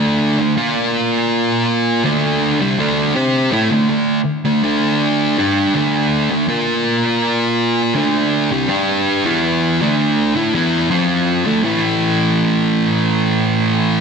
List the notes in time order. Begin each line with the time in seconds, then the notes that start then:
Already playing: D3 A3 D4
0.39 D3 A3
0.57 A#3 F4 A#4
2.05 D3 A3 D4
2.60 C3 G3
2.79 D3 A3 D4
3.15 C4 G4 C5
3.52 A3 E4
3.70 D3 A3
3.89 D3 A3
4.45 D3 A3
4.64 D3 A3 D4
5.38 G3 D4 G4
5.75 D3 A3 D4
6.30 D3 A3
6.48 A#3 F4 A#4
7.95 D3 A3 D4
8.51 C3 G3
8.69 G3 D4 G4
9.24 E3 B3 E4
9.81 D3 A3 D4
10.35 A3 E4
10.54 E3 B3 E4
10.90 F3 C4 F4
11.46 D3 A3
11.63 A2 E3 A3